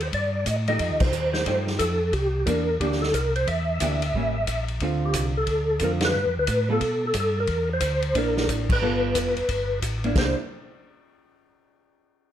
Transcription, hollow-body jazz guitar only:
0, 0, Header, 1, 2, 480
1, 0, Start_track
1, 0, Tempo, 334448
1, 1144, Time_signature, 4, 2, 24, 8
1, 17682, End_track
2, 0, Start_track
2, 0, Title_t, "Hollow-body jazz guitar"
2, 0, Program_c, 0, 26
2, 982, Note_on_c, 0, 53, 64
2, 982, Note_on_c, 0, 57, 68
2, 993, Note_on_c, 0, 63, 73
2, 999, Note_on_c, 0, 67, 72
2, 1595, Note_off_c, 0, 53, 0
2, 1595, Note_off_c, 0, 57, 0
2, 1600, Note_off_c, 0, 63, 0
2, 1603, Note_off_c, 0, 67, 0
2, 2109, Note_on_c, 0, 53, 54
2, 2115, Note_on_c, 0, 63, 65
2, 2116, Note_on_c, 0, 57, 57
2, 2126, Note_on_c, 0, 67, 57
2, 2831, Note_off_c, 0, 53, 0
2, 2834, Note_off_c, 0, 57, 0
2, 2834, Note_off_c, 0, 63, 0
2, 2839, Note_off_c, 0, 67, 0
2, 3538, Note_on_c, 0, 52, 54
2, 3543, Note_on_c, 0, 58, 68
2, 3558, Note_on_c, 0, 62, 66
2, 3816, Note_off_c, 0, 52, 0
2, 3818, Note_off_c, 0, 58, 0
2, 3826, Note_off_c, 0, 62, 0
2, 4030, Note_on_c, 0, 52, 58
2, 4034, Note_on_c, 0, 58, 66
2, 4043, Note_on_c, 0, 62, 69
2, 4302, Note_off_c, 0, 52, 0
2, 4304, Note_off_c, 0, 58, 0
2, 4308, Note_off_c, 0, 62, 0
2, 5477, Note_on_c, 0, 52, 57
2, 5480, Note_on_c, 0, 58, 64
2, 5488, Note_on_c, 0, 67, 63
2, 5492, Note_on_c, 0, 62, 57
2, 5745, Note_off_c, 0, 52, 0
2, 5747, Note_off_c, 0, 58, 0
2, 5750, Note_off_c, 0, 67, 0
2, 5753, Note_off_c, 0, 62, 0
2, 5962, Note_on_c, 0, 55, 57
2, 5979, Note_on_c, 0, 58, 57
2, 5982, Note_on_c, 0, 61, 63
2, 6227, Note_off_c, 0, 55, 0
2, 6236, Note_off_c, 0, 58, 0
2, 6237, Note_off_c, 0, 61, 0
2, 6913, Note_on_c, 0, 50, 50
2, 6920, Note_on_c, 0, 57, 52
2, 6927, Note_on_c, 0, 60, 58
2, 6929, Note_on_c, 0, 65, 60
2, 7632, Note_off_c, 0, 50, 0
2, 7636, Note_off_c, 0, 57, 0
2, 7639, Note_off_c, 0, 60, 0
2, 7640, Note_off_c, 0, 65, 0
2, 8345, Note_on_c, 0, 50, 52
2, 8354, Note_on_c, 0, 60, 56
2, 8357, Note_on_c, 0, 57, 47
2, 8363, Note_on_c, 0, 65, 54
2, 8823, Note_off_c, 0, 50, 0
2, 8828, Note_off_c, 0, 60, 0
2, 8829, Note_off_c, 0, 57, 0
2, 8832, Note_off_c, 0, 65, 0
2, 9601, Note_on_c, 0, 55, 55
2, 9612, Note_on_c, 0, 59, 59
2, 9615, Note_on_c, 0, 65, 54
2, 9623, Note_on_c, 0, 69, 69
2, 9761, Note_off_c, 0, 55, 0
2, 9766, Note_off_c, 0, 59, 0
2, 9768, Note_off_c, 0, 65, 0
2, 9771, Note_off_c, 0, 69, 0
2, 11700, Note_on_c, 0, 58, 55
2, 11705, Note_on_c, 0, 62, 66
2, 11719, Note_on_c, 0, 64, 65
2, 12424, Note_off_c, 0, 58, 0
2, 12427, Note_off_c, 0, 62, 0
2, 12434, Note_off_c, 0, 64, 0
2, 12658, Note_on_c, 0, 55, 59
2, 12664, Note_on_c, 0, 59, 60
2, 12669, Note_on_c, 0, 65, 70
2, 12673, Note_on_c, 0, 69, 68
2, 13383, Note_off_c, 0, 55, 0
2, 13387, Note_off_c, 0, 59, 0
2, 13389, Note_off_c, 0, 65, 0
2, 13391, Note_off_c, 0, 69, 0
2, 14413, Note_on_c, 0, 58, 64
2, 14428, Note_on_c, 0, 62, 62
2, 14437, Note_on_c, 0, 64, 69
2, 14577, Note_off_c, 0, 58, 0
2, 14586, Note_off_c, 0, 62, 0
2, 14590, Note_off_c, 0, 64, 0
2, 14594, Note_on_c, 0, 58, 57
2, 14603, Note_on_c, 0, 62, 65
2, 14607, Note_on_c, 0, 64, 73
2, 14862, Note_off_c, 0, 58, 0
2, 14867, Note_off_c, 0, 62, 0
2, 14869, Note_off_c, 0, 64, 0
2, 17682, End_track
0, 0, End_of_file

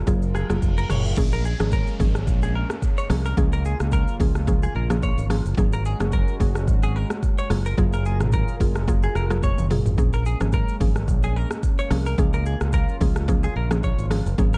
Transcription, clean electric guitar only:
0, 0, Header, 1, 2, 480
1, 0, Start_track
1, 0, Key_signature, -5, "minor"
1, 0, Tempo, 550459
1, 1023, Time_signature, 4, 2, 24, 8
1, 12713, End_track
2, 0, Start_track
2, 0, Title_t, "Clean electric guitar"
2, 0, Program_c, 0, 27
2, 308, Note_on_c, 0, 68, 83
2, 411, Note_off_c, 0, 68, 0
2, 680, Note_on_c, 0, 70, 80
2, 764, Note_off_c, 0, 70, 0
2, 788, Note_on_c, 0, 73, 80
2, 891, Note_off_c, 0, 73, 0
2, 1160, Note_on_c, 0, 70, 77
2, 1244, Note_off_c, 0, 70, 0
2, 1268, Note_on_c, 0, 68, 84
2, 1371, Note_off_c, 0, 68, 0
2, 1508, Note_on_c, 0, 70, 85
2, 1697, Note_off_c, 0, 70, 0
2, 2120, Note_on_c, 0, 68, 75
2, 2204, Note_off_c, 0, 68, 0
2, 2227, Note_on_c, 0, 70, 84
2, 2330, Note_off_c, 0, 70, 0
2, 2599, Note_on_c, 0, 73, 77
2, 2683, Note_off_c, 0, 73, 0
2, 2840, Note_on_c, 0, 70, 86
2, 2924, Note_off_c, 0, 70, 0
2, 3080, Note_on_c, 0, 70, 83
2, 3164, Note_off_c, 0, 70, 0
2, 3188, Note_on_c, 0, 68, 79
2, 3291, Note_off_c, 0, 68, 0
2, 3428, Note_on_c, 0, 70, 98
2, 3617, Note_off_c, 0, 70, 0
2, 4041, Note_on_c, 0, 68, 85
2, 4124, Note_off_c, 0, 68, 0
2, 4149, Note_on_c, 0, 70, 90
2, 4251, Note_off_c, 0, 70, 0
2, 4389, Note_on_c, 0, 73, 84
2, 4577, Note_off_c, 0, 73, 0
2, 5001, Note_on_c, 0, 70, 79
2, 5084, Note_off_c, 0, 70, 0
2, 5108, Note_on_c, 0, 68, 83
2, 5211, Note_off_c, 0, 68, 0
2, 5348, Note_on_c, 0, 70, 87
2, 5536, Note_off_c, 0, 70, 0
2, 5960, Note_on_c, 0, 68, 81
2, 6068, Note_off_c, 0, 68, 0
2, 6068, Note_on_c, 0, 70, 84
2, 6171, Note_off_c, 0, 70, 0
2, 6441, Note_on_c, 0, 73, 80
2, 6524, Note_off_c, 0, 73, 0
2, 6680, Note_on_c, 0, 70, 81
2, 6764, Note_off_c, 0, 70, 0
2, 6920, Note_on_c, 0, 70, 83
2, 7004, Note_off_c, 0, 70, 0
2, 7028, Note_on_c, 0, 68, 82
2, 7131, Note_off_c, 0, 68, 0
2, 7269, Note_on_c, 0, 70, 97
2, 7457, Note_off_c, 0, 70, 0
2, 7880, Note_on_c, 0, 68, 84
2, 7964, Note_off_c, 0, 68, 0
2, 7989, Note_on_c, 0, 70, 89
2, 8091, Note_off_c, 0, 70, 0
2, 8228, Note_on_c, 0, 73, 83
2, 8417, Note_off_c, 0, 73, 0
2, 8840, Note_on_c, 0, 70, 82
2, 8924, Note_off_c, 0, 70, 0
2, 8949, Note_on_c, 0, 68, 82
2, 9051, Note_off_c, 0, 68, 0
2, 9189, Note_on_c, 0, 70, 90
2, 9377, Note_off_c, 0, 70, 0
2, 9801, Note_on_c, 0, 68, 78
2, 9909, Note_off_c, 0, 68, 0
2, 9909, Note_on_c, 0, 70, 80
2, 10011, Note_off_c, 0, 70, 0
2, 10280, Note_on_c, 0, 73, 79
2, 10364, Note_off_c, 0, 73, 0
2, 10520, Note_on_c, 0, 70, 84
2, 10604, Note_off_c, 0, 70, 0
2, 10760, Note_on_c, 0, 70, 86
2, 10844, Note_off_c, 0, 70, 0
2, 10869, Note_on_c, 0, 68, 85
2, 10971, Note_off_c, 0, 68, 0
2, 11108, Note_on_c, 0, 70, 97
2, 11297, Note_off_c, 0, 70, 0
2, 11721, Note_on_c, 0, 68, 83
2, 11804, Note_off_c, 0, 68, 0
2, 11829, Note_on_c, 0, 70, 84
2, 11931, Note_off_c, 0, 70, 0
2, 12068, Note_on_c, 0, 73, 83
2, 12257, Note_off_c, 0, 73, 0
2, 12681, Note_on_c, 0, 70, 81
2, 12713, Note_off_c, 0, 70, 0
2, 12713, End_track
0, 0, End_of_file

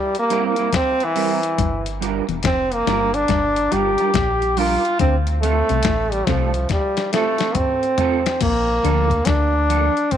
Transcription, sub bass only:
0, 0, Header, 1, 2, 480
1, 0, Start_track
1, 0, Tempo, 853485
1, 891, Time_signature, 4, 2, 24, 8
1, 5720, End_track
2, 0, Start_track
2, 0, Title_t, "Sub bass"
2, 0, Program_c, 0, 38
2, 892, Note_on_c, 0, 31, 103
2, 1243, Note_off_c, 0, 31, 0
2, 1282, Note_on_c, 0, 28, 87
2, 1362, Note_off_c, 0, 28, 0
2, 1373, Note_on_c, 0, 29, 107
2, 1587, Note_off_c, 0, 29, 0
2, 1612, Note_on_c, 0, 31, 87
2, 1827, Note_off_c, 0, 31, 0
2, 1853, Note_on_c, 0, 31, 99
2, 2067, Note_off_c, 0, 31, 0
2, 2094, Note_on_c, 0, 31, 84
2, 2229, Note_off_c, 0, 31, 0
2, 2331, Note_on_c, 0, 34, 89
2, 2683, Note_off_c, 0, 34, 0
2, 2811, Note_on_c, 0, 38, 95
2, 3163, Note_off_c, 0, 38, 0
2, 3204, Note_on_c, 0, 36, 93
2, 3283, Note_off_c, 0, 36, 0
2, 3288, Note_on_c, 0, 33, 98
2, 3505, Note_off_c, 0, 33, 0
2, 3528, Note_on_c, 0, 36, 88
2, 3745, Note_off_c, 0, 36, 0
2, 4729, Note_on_c, 0, 34, 105
2, 4946, Note_off_c, 0, 34, 0
2, 4972, Note_on_c, 0, 38, 95
2, 5188, Note_off_c, 0, 38, 0
2, 5212, Note_on_c, 0, 38, 98
2, 5565, Note_off_c, 0, 38, 0
2, 5720, End_track
0, 0, End_of_file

